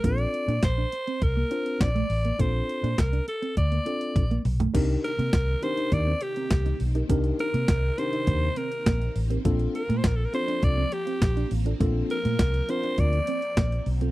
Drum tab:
CC |----------------|----------------|x---------------|----------------|
HH |xxxxx-xxx-xxxxox|x-xxxxxxxxxxxxox|xxxxx-xxx-xxxxox|xxxxx-xxx-xxxxox|
CP |----x-------x---|----x-----------|----x-------x---|----x-------x---|
SD |----o-------o---|----o-----------|----o-------o---|----o-------o---|
T1 |----------------|------------o---|----------------|----------------|
T2 |----------------|--------------o-|----------------|----------------|
FT |----------------|---------------o|----------------|----------------|
BD |o---o---o---o---|o---o---o---o---|o---o---o---o---|o---o---o---o---|

CC |----------------|----------------|
HH |xxxxx-xxx-xxxxox|x-xxxxxxxxxxxxox|
CP |----x-------x---|----x-------x---|
SD |----o-------o---|----o-------o---|
T1 |----------------|----------------|
T2 |----------------|----------------|
FT |----------------|----------------|
BD |o---o---o---o---|o---o---o---o---|